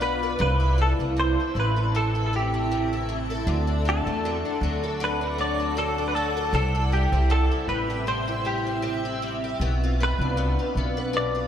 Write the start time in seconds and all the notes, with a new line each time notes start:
Already playing: B1 B2 D4 F4 B4 D5 F5 D6
0.01 B3 B4
0.23 B4
0.39 C2 C3 C4 B4 E5 A5 E6
0.60 E4
0.78 E3 A4
0.99 C2 A3
1.17 C3 C5
1.40 E4
1.55 A1 E3
1.60 B4
1.76 A4
1.95 C3 A4
2.15 E4
2.26 A4
2.33 E3 G4
2.54 A3
2.71 C3
2.93 E4
3.09 E3
3.30 A4
3.46 D2 D3 A4 D5 F#5 D6
3.67 D4
3.85 F#3 A4
4.06 E2 A3
4.25 D3
4.45 D4
4.61 D2 F#3
4.84 A4
5.00 D3 B4
5.21 D4
5.38 F#3 D5
5.60 A3
5.77 D3 A4
5.98 D4
6.08 B4
6.15 F#3 A4
6.37 A4
6.53 C2 C3 C4 A4 E5 G5 E6
6.75 E4
6.92 G3 G4
7.12 C2 C4
7.30 C3 A4
7.51 E4
7.68 A1 G3 B4
7.90 G4
8.07 C3 C5
8.28 E4
8.45 G3 G4
8.67 C4
8.82 C3
9.05 E4
9.22 G3
9.44 G4
9.60 B1 B2 B4 D5 F5 D6
9.84 F4
10.00 B3 B4
10.19 C2 D4
10.37 B2
10.59 F4
10.75 B1 B3
10.97 B4
11.13 B2 D5
11.35 F4